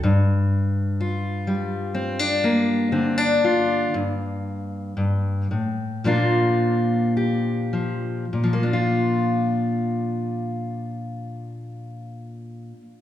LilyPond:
\new Staff \with { instrumentName = "Steel-string acoustic guitar" } { \time 4/4 \key bes \major \tempo 4 = 55 << { r4 f'4 c'16 d'16 bes8 c'16 d'16 f'8 | r2 <f bes d' f'>4 g'4 | <f bes d' f'>1 | } \\ { g,4. g4. d4 | g,4 g,8 a,8 bes,4. f8 | bes,1 | } >> }